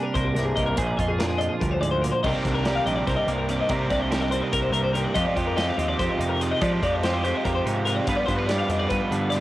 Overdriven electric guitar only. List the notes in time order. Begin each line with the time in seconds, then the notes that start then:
2.24 C3 D#3 G3 C4 G4
2.46 G3 C4 G4
2.67 C3 D#3 G3 C4 G4
2.87 G3 C4 G4
3.49 D#3 G3 C4 G4
3.70 C3 D#3 G3 C4 G4
3.90 G3 C4 G4
4.12 C3 D#3 G3 C4 G4
4.32 G3 C4 G4
4.94 D#3 G3 C4 G4
5.15 F3 G#3 C4 F4
5.36 G#3 C4 F4
5.57 F3 G#3 C4 F4
5.79 G#3 C4 F4
6.41 F3 G#3 C4 F4
6.62 F3 G#3 C4 F4
6.82 G#3 C4 F4
7.04 F3 G#3 C4 F4
7.25 G#3 C4 F4
7.87 F3 G#3 C4 F4
8.08 G2 D3 F3 B3 F4
8.29 F3 B3 F4
8.49 G2 D3 F3 B3 F4
8.70 F3 B3 F4
9.33 D3 F3 B3 F4